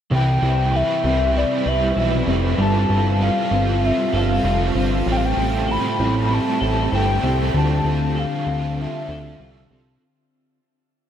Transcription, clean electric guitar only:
0.11 C3
0.43 E4
0.74 B4
1.05 C4
1.35 E4
1.66 B4
1.97 E4
2.27 C4
2.58 G3
2.90 F4
3.21 A4
3.51 C4
3.82 F4
4.13 A4
4.45 F4
4.75 C4
5.06 A2
5.37 E4
5.68 A4
5.99 C4
6.30 E4
6.61 A4
6.92 E4
7.23 C4
7.54 D3
7.85 F4
8.15 A4
8.47 C4
8.78 F4
9.09 A4
9.40 F4
9.71 C4

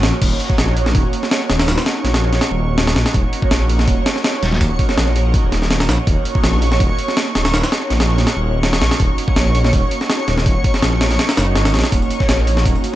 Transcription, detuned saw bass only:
0.04 A#1
0.22 D#1
0.58 A#1
0.95 D#1
1.50 D#1
1.68 D#1
2.04 A#1
2.51 D#1
2.96 A#1
3.14 D#1
3.51 A#1
3.88 D#1
4.42 D#1
4.61 D#1
4.98 A#1
5.44 D#1
5.89 A#1
6.07 D#1
6.44 A#1
6.80 D#1
7.35 D#1
7.54 D#1
7.90 A#1
8.37 D#1
8.82 A#1
9.00 D#1
9.36 A#1
9.73 D#1
10.28 D#1
10.46 D#1
10.83 A#1
11.38 F#1
11.56 G#1
11.74 A#1
11.92 D#1
12.29 A#1
12.66 D#1

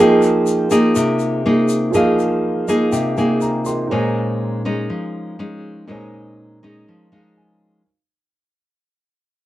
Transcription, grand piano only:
Already playing: F4 G#4
0.00 A#4 D#5 G5
1.90 F4 G#4 A#4
1.95 D#5 F5
2.67 D#5
2.92 G5
3.18 G#5
3.41 A#5
3.65 F4 G#4 A#4 D#5 G5 C6
3.87 D#4 A#4 C5
3.92 C#5 G#5
5.87 D#4 A#4 C5
5.91 C#5 G#5
7.13 F5
7.38 G#5

